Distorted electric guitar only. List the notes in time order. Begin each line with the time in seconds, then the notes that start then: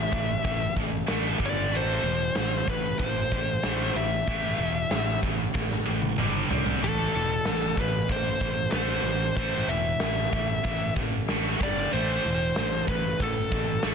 0.12 A2 E3
0.44 A2 E3
0.77 A2 E3
1.07 A2 E3 A3
1.39 G2 D3 G3
1.72 A2 E3 A3
2.03 A2 E3
2.35 A2 E3
2.68 A2 E3
2.99 A2 E3
3.32 A2 E3
3.63 A2 E3 A3
3.97 A2 E3
4.28 A2 E3 A3
4.60 A2 E3
4.92 A2 E3
5.23 A2 E3
5.54 A2 E3
5.86 A2 E3
6.18 G2 D3 G3
6.49 C3 G3 C4
6.82 A2 E3 A3
7.15 A2 E3
7.46 A2 E3
7.79 A2 E3
8.09 A2 E3
8.41 A2 E3
8.73 A2 E3 A3
9.05 A2 E3
9.37 A2 E3 A3
9.70 A2 E3
10.01 A2 E3
10.33 A2 E3
10.64 A2 E3
10.97 A2 E3
11.28 A2 E3 A3
11.60 G2 D3 G3
11.92 A2 E3 A3
12.25 A2 E3
12.57 A2 E3
12.88 A2 E3
13.20 A2 E3
13.52 A2 E3
13.84 A2 E3 A3